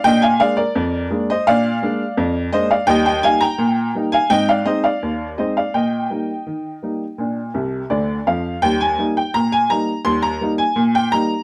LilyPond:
<<
  \new Staff \with { instrumentName = "Upright piano" } { \time 2/4 \key ees \major \tempo 4 = 84 << { g''16 aes''16 f''16 d''4 ees''16 | f''4. ees''16 f''16 | g''16 g''16 aes''16 bes''4 aes''16 | g''16 f''16 ees''16 f''8. ees''16 f''16 |
g''2~ | g''4 d''8 f''8 | g''16 aes''8 g''16 bes''16 aes''16 bes''8 | c'''16 bes''8 aes''8 g''16 bes''8 | } \\ { ees''16 f''16 d''16 bes'4 c''16 | d''4. c''16 d''16 | ees''16 ees''16 f''16 g''4 f''16 | ees''16 d''16 c''16 d''8. c''16 d''16 |
ees''2~ | ees''4. r8 | r2 | r2 | } >> }
  \new Staff \with { instrumentName = "Upright piano" } { \clef bass \time 2/4 \key ees \major <bes, d'>8 <aes bes d'>8 f,8 <aes bes d'>8 | <bes, d'>8 <aes bes d'>8 f,8 <aes bes d'>8 | <ees, g>8 <g bes ees'>8 bes,8 <g bes ees'>8 | <aes, c'>8 <aes c' ees'>8 ees,8 <aes c' ees'>8 |
bes,8 <g bes ees'>8 ees8 <g bes ees'>8 | <bes, d'>8 <c, c>8 <d, d>8 <f, f>8 | <ees, g>8 <g bes ees'>8 bes,8 <g bes ees'>8 | <ees, g>8 <g bes ees'>8 bes,8 <g bes ees'>8 | }
>>